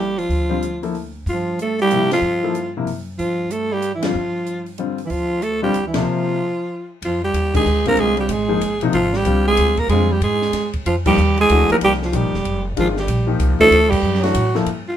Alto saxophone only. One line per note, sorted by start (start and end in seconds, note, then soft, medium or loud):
0.00 0.20 G4 medium
0.18 0.83 F4 medium
1.29 1.58 F4 medium
1.62 1.79 A4 medium
1.82 2.10 G4 loud
2.13 2.72 F4 medium
3.19 3.53 F4 medium
3.52 3.74 A4 medium
3.73 3.94 G4 medium
3.95 4.06 E4 medium
4.05 4.68 F4 medium
5.07 5.12 E4 medium
5.07 5.45 F4 medium
5.43 5.63 A4 medium
5.63 5.85 G4 medium
5.87 5.98 E4 medium
5.97 6.92 F4 medium
7.05 7.22 F4 medium
7.24 7.53 G4 medium
7.56 7.85 G#4 loud
7.88 8.01 A#4 loud
8.00 8.19 G#4 loud
8.20 8.34 G4 medium
8.32 8.84 G#4 medium
8.94 9.18 F4 loud
9.16 9.47 G4 medium
9.47 9.81 G#4 loud
9.79 9.90 A#4 loud
9.90 10.14 G#4 medium
10.12 10.23 G4 medium
10.23 10.71 G#4 medium
10.87 10.95 F4 medium
11.07 11.36 G4 medium
11.41 11.69 G#4 medium
11.72 11.77 A#4 loud
11.84 11.93 G4 loud
12.05 12.17 F4 medium
12.16 12.67 G4 medium
12.80 12.88 F4 medium
12.99 13.28 G4 medium
13.61 13.92 A4 loud
13.90 14.25 G4 loud
14.23 14.56 F#4 medium
14.88 14.97 F4 medium